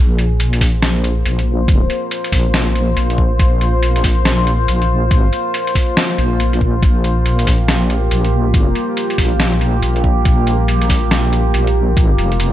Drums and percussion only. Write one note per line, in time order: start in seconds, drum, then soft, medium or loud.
0.19 closed hi-hat medium
0.40 closed hi-hat medium
0.53 closed hi-hat medium
0.61 kick medium
0.61 open hi-hat loud
0.83 snare loud
0.83 closed hi-hat medium
1.04 closed hi-hat medium
1.26 closed hi-hat medium
1.39 closed hi-hat soft
1.68 kick loud
1.68 closed hi-hat medium
1.90 closed hi-hat medium
2.11 closed hi-hat medium
2.24 closed hi-hat medium
2.32 kick medium
2.32 open hi-hat loud
2.54 snare loud
2.54 closed hi-hat medium
2.75 closed hi-hat medium
2.97 closed hi-hat medium
3.10 closed hi-hat soft
3.18 kick medium
3.40 kick loud
3.40 closed hi-hat medium
3.61 closed hi-hat medium
3.83 closed hi-hat medium
3.96 closed hi-hat medium
4.04 kick medium
4.04 open hi-hat medium
4.25 snare loud
4.25 closed hi-hat medium
4.47 closed hi-hat medium
4.68 closed hi-hat medium
4.82 closed hi-hat soft
5.11 kick loud
5.11 closed hi-hat medium
5.33 closed hi-hat medium
5.54 closed hi-hat medium
5.67 closed hi-hat medium
5.75 kick medium
5.75 open hi-hat medium
5.97 snare loud
5.97 closed hi-hat medium
6.18 closed hi-hat medium
6.40 closed hi-hat medium
6.53 closed hi-hat soft
6.61 kick medium
6.83 kick loud
6.83 closed hi-hat medium
7.04 closed hi-hat soft
7.26 closed hi-hat medium
7.39 closed hi-hat medium
7.47 kick medium
7.47 open hi-hat medium
7.68 snare loud
7.68 closed hi-hat medium
7.90 closed hi-hat soft
8.11 closed hi-hat medium
8.25 closed hi-hat soft
8.54 kick loud
8.54 closed hi-hat medium
8.75 closed hi-hat medium
8.97 closed hi-hat medium
9.10 closed hi-hat medium
9.18 kick medium
9.18 open hi-hat loud
9.40 snare loud
9.40 closed hi-hat medium
9.61 closed hi-hat soft
9.83 closed hi-hat medium
9.96 closed hi-hat soft
10.04 kick medium
10.25 kick loud
10.25 closed hi-hat medium
10.47 closed hi-hat medium
10.68 closed hi-hat medium
10.82 closed hi-hat medium
10.90 kick medium
10.90 open hi-hat loud
11.11 snare loud
11.11 closed hi-hat medium
11.33 closed hi-hat soft
11.54 closed hi-hat medium
11.67 closed hi-hat soft
11.97 kick loud
11.97 closed hi-hat medium
12.18 closed hi-hat medium
12.32 closed hi-hat soft
12.40 closed hi-hat medium